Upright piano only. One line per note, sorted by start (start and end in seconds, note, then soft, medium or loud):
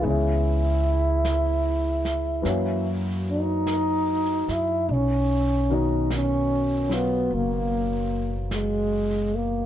0.00 2.40 E3 soft
0.00 2.44 G#3 soft
0.00 2.45 B3 soft
0.07 2.45 C#4 soft
0.07 2.48 G#4 soft
2.42 4.87 E3 soft
2.42 4.88 F#3 soft
2.42 4.88 A#3 soft
2.46 4.89 C#4 soft
2.46 4.90 F#4 soft
5.70 9.66 B2 soft
5.70 9.66 D#3 soft
5.70 9.66 C#4 soft
5.70 9.66 F#4 soft
5.70 9.66 A#4 soft
6.89 9.66 F#3 soft
6.89 9.66 F4 soft